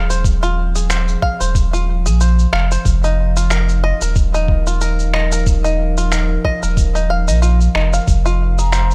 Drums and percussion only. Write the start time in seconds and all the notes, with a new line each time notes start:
0.10 cabasa
0.24 kick, cabasa
0.43 cabasa
0.75 cabasa
0.90 finger snap, cabasa
1.08 cabasa
1.22 kick
1.41 cabasa
1.55 kick, cabasa
1.74 cabasa
2.06 cabasa
2.20 cabasa
2.39 cabasa
2.53 finger snap
2.71 cabasa
2.85 kick, cabasa
3.04 cabasa
3.37 cabasa
3.50 finger snap, cabasa
3.69 cabasa
4.01 cabasa
4.16 kick, cabasa
4.34 cabasa
4.48 kick
4.67 cabasa
4.81 cabasa
4.99 cabasa
5.14 finger snap
5.32 cabasa
5.47 kick, cabasa
5.65 cabasa
5.97 cabasa
6.12 finger snap, cabasa
6.45 kick
6.63 cabasa
6.77 kick, cabasa
6.95 cabasa
7.28 cabasa
7.42 cabasa
7.61 cabasa
7.75 finger snap
7.93 cabasa
8.07 kick, cabasa
8.26 cabasa
8.58 cabasa
8.72 finger snap, cabasa
8.91 cabasa